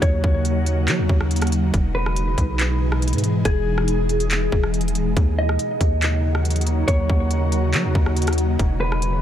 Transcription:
Already playing: ambient pad C#3 F#3 A#3 D#4 F#4
0.02 808-style bass D#2, clean electric guitar C#5, kick, closed hi-hat
0.24 808-style bass D#2, kick
0.45 closed hi-hat
0.66 closed hi-hat
0.88 808-style bass F#3, clap, closed hi-hat
0.99 808-style bass D#2
1.09 808-style bass D#2, kick
1.21 cross-stick
1.31 closed hi-hat
1.36 closed hi-hat
1.42 cross-stick, closed hi-hat
1.47 closed hi-hat
1.52 closed hi-hat
1.74 808-style bass E1, ambient pad B2 E3 G#3 G#4, kick, closed hi-hat
1.95 clean electric guitar B4
2.06 cross-stick
2.16 closed hi-hat
2.38 808-style bass B1, kick, closed hi-hat
2.59 clap, closed hi-hat
2.92 cross-stick
3.02 closed hi-hat
3.08 closed hi-hat
3.13 808-style bass G#2, closed hi-hat
3.18 closed hi-hat
3.24 closed hi-hat
3.45 808-style bass E1, clean electric guitar G#4, kick, closed hi-hat
3.78 cross-stick
3.88 closed hi-hat
4.09 closed hi-hat, open hi-hat
4.20 closed hi-hat
4.31 clap, closed hi-hat
4.52 808-style bass E1, kick
4.63 cross-stick
4.74 closed hi-hat
4.81 closed hi-hat
4.88 closed hi-hat
4.95 808-style bass D#1, closed hi-hat
5.06 808-style bass E1
5.17 808-style bass D#2, ambient pad C#3 F#3 A#3 F#4, synth texture D#4 C#5 F#5, kick, closed hi-hat
5.39 clean electric guitar D#5
5.49 cross-stick
5.59 closed hi-hat
5.81 808-style bass D#2, kick, closed hi-hat
6.02 clap, closed hi-hat
6.35 cross-stick
6.45 closed hi-hat
6.50 closed hi-hat
6.56 closed hi-hat
6.61 closed hi-hat
6.67 closed hi-hat
6.88 808-style bass D#2, clean electric guitar C#5, kick, closed hi-hat
7.10 808-style bass D#2, kick
7.31 closed hi-hat
7.52 closed hi-hat
7.74 808-style bass F#3, clap, closed hi-hat
7.84 808-style bass D#2
7.95 808-style bass D#2, kick
8.06 cross-stick
8.17 closed hi-hat
8.22 closed hi-hat
8.27 cross-stick, closed hi-hat
8.33 closed hi-hat
8.38 closed hi-hat
8.59 808-style bass E1, ambient pad B2 E3 G#3 G#4 D#5, synth texture E4 D#5 G#5, kick, closed hi-hat
8.80 clean electric guitar B4
8.92 cross-stick
9.02 closed hi-hat

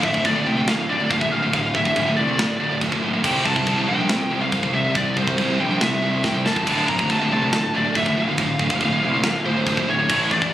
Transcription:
0.03 picked electric bass D1, distorted electric guitar D2 A2, lead electric guitar E5, kick
0.13 distorted electric guitar D2 A2, kick
0.25 picked electric bass D1, distorted electric guitar D2 A2, lead electric guitar D5, kick, china
0.36 distorted electric guitar D2 A2
0.46 picked electric bass C2, distorted electric guitar D2 A2, lead electric guitar G5
0.57 distorted electric guitar D2 A2
0.68 picked electric bass D1, distorted electric guitar D2 A2, lead electric guitar F5, snare, china
0.89 picked electric bass D1, distorted electric guitar D2 A2, lead electric guitar D5
1.00 distorted electric guitar D2 A2
1.11 picked electric bass D1, distorted electric guitar D2 A2, lead electric guitar F5, kick, china
1.20 distorted electric guitar D2 A2, lead electric guitar E5, kick
1.32 picked electric bass D1, distorted electric guitar D2 A2, lead electric guitar F5
1.43 distorted electric guitar D2 A2
1.53 picked electric bass D1, distorted electric guitar D2 A2, lead electric guitar F5, kick, china
1.74 picked electric bass D1, distorted electric guitar D2 A2, lead electric guitar E5, kick
1.85 distorted electric guitar D2 A2, kick
1.96 picked electric bass D1, distorted electric guitar D2 A2, kick, china
2.07 distorted electric guitar D2 A2
2.17 picked electric bass C2, distorted electric guitar D2 A2, lead electric guitar D5
2.29 distorted electric guitar D2 A2
2.39 picked electric bass D1, distorted electric guitar D2 A2, snare, china
2.60 picked electric bass D1, distorted electric guitar D2 A2
2.71 distorted electric guitar D2 A2
2.81 picked electric bass D1, distorted electric guitar D2 A2, kick, china
2.92 distorted electric guitar D2 A2, kick
3.02 picked electric bass D1, distorted electric guitar D2 A2
3.14 distorted electric guitar D2 A2
3.24 picked electric bass C2, distorted electric guitar C3 G3 C4, lead electric guitar G5, kick, crash, china
3.45 picked electric bass C2, distorted electric guitar C3 G3, lead electric guitar A5, kick
3.56 distorted electric guitar C3 G3, kick
3.67 picked electric bass C2, distorted electric guitar C3 G3, kick, china
3.76 distorted electric guitar C3 G3
3.88 picked electric bass A#1, distorted electric guitar C3 G3, lead electric guitar G5
3.98 distorted electric guitar C3 G3
4.08 picked electric bass C2, distorted electric guitar C3 G3, snare, china
4.30 picked electric bass C2, distorted electric guitar C3 G3
4.40 distorted electric guitar C3 G3, lead electric guitar F5
4.52 picked electric bass C2, distorted electric guitar C3 G3, kick, china
4.62 distorted electric guitar C3 G3, kick
4.73 picked electric bass C2, distorted electric guitar C3 G3, lead electric guitar E5
4.84 distorted electric guitar C3 G3
4.95 picked electric bass C2, distorted electric guitar C3 G3, lead electric guitar D5, kick, china
5.17 picked electric bass C2, distorted electric guitar C3 G3, lead electric guitar C5, kick
5.27 distorted electric guitar C3 G3, kick
5.38 picked electric bass C2, distorted electric guitar C3 G3, kick, china
5.49 distorted electric guitar C3 G3
5.60 picked electric bass A#1, distorted electric guitar C3 G3, lead electric guitar G5
5.71 distorted electric guitar C3 G3
5.81 picked electric bass C2, distorted electric guitar C3 G3, lead electric guitar E5, snare, china
6.02 picked electric bass C2, distorted electric guitar C3 G3
6.13 distorted electric guitar C3 G3
6.23 picked electric bass C2, distorted electric guitar C3 G3, lead electric guitar G5, kick, snare
6.34 distorted electric guitar C3 G3
6.45 picked electric bass E1, distorted electric guitar C3 G3, lead electric guitar A5, snare
6.56 distorted electric guitar C3 G3, kick
6.66 picked electric bass D1, distorted electric guitar D2 A2 D3, kick, crash, china
6.87 picked electric bass D1, distorted electric guitar D2 A2, lead electric guitar A#5, kick
6.98 distorted electric guitar D2 A2, kick
7.09 picked electric bass D1, distorted electric guitar D2 A2, lead electric guitar A5, kick, china
7.20 distorted electric guitar D2 A2
7.31 picked electric bass C2, distorted electric guitar D2 A2, lead electric guitar A5
7.42 distorted electric guitar D2 A2
7.53 picked electric bass D1, distorted electric guitar D2 A2, snare, china
7.74 picked electric bass D1, distorted electric guitar D2 A2, lead electric guitar D5
7.85 distorted electric guitar D2 A2
7.95 picked electric bass D1, distorted electric guitar D2 A2, lead electric guitar E5, kick, china
8.06 distorted electric guitar D2 A2, kick
8.17 picked electric bass D1, distorted electric guitar D2 A2, lead electric guitar F5
8.28 distorted electric guitar D2 A2
8.38 picked electric bass D1, distorted electric guitar D2 A2, kick, china
8.59 picked electric bass D1, distorted electric guitar D2 A2, kick
8.70 distorted electric guitar D2 A2, kick
8.80 picked electric bass D1, distorted electric guitar D2 A2, kick, china
8.92 distorted electric guitar D2 A2
9.02 picked electric bass C2, distorted electric guitar D2 A2
9.13 distorted electric guitar D2 A2
9.23 picked electric bass D1, distorted electric guitar D2 A2, snare, china
9.45 picked electric bass D1, distorted electric guitar D2 A2, lead electric guitar C5
9.56 distorted electric guitar D2 A2
9.66 picked electric bass D1, distorted electric guitar D2 A2, kick, china
9.77 distorted electric guitar D2 A2, kick
9.88 picked electric bass D1, distorted electric guitar D2 A2, lead electric guitar C#5
9.99 distorted electric guitar D2 A2
10.10 picked electric bass A1, distorted electric guitar A2 E3 A3, kick, crash, china
10.31 picked electric bass A1, distorted electric guitar A2 E3, lead electric guitar D5, kick
10.42 distorted electric guitar A2 E3, kick

